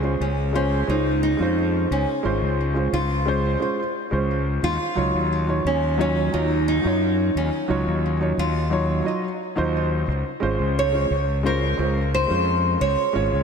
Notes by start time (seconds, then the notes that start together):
Already playing: C#2
0.02 G#3 C#4 F4 C5
0.20 C#2 C#4
0.53 G#3 C#4 F4 C5
0.87 C#2 G#3 C#4 D#4 F4 C5
1.23 D#4
1.37 F2 G#3 C#4 F4
1.42 C5
1.90 C#2 C#4
2.23 G#1 G#3 C#4 F4 C5
2.42 C#2
2.74 G#3 C#4 F4 C5
2.92 C#2 F4
3.26 G#3 C#4 F4 C5
3.60 G#3 C#4 F4 C5
4.11 C#2 G#3 C#4 F4 C5
4.63 D#2 F4
4.95 C#2 F#3 D#4 F4 C#5
5.14 D#2
5.47 F#3 D#4 F4 C#5
5.65 D#2 C#4
5.98 F#3 C#4 D#4 F4 C#5
6.32 D#2 F#3 D#4 F4 C#5
6.68 D#4
6.82 F#2 F#3 D#4 F4
6.87 C#5
7.35 D#2 C#4
7.68 C#2 F#3 D#4 F4 C#5
7.86 D#2
8.20 F#3 D#4 F4 C#5
8.37 D#2 F4
8.70 F#3 D#4 F4 C#5
9.04 F#3 D#4 F4 D#5
9.56 D#2 F#3 D#4 F4 C5
10.08 C#2
10.40 G#1 G#3 C#4 F4 C5
10.60 C#2
10.79 C#5
10.92 G#3 C#4 F4 C5
11.10 C#2
11.43 G#3 C#4 F4 A#4 C5
11.77 C#2 G#3 C#4 F4 C5
12.14 C5
12.27 F2 G#3 C#4 F4
12.32 C5
12.81 C#2 C#5
13.13 G#1 G#3 C#4 F4 C#5
13.32 C#2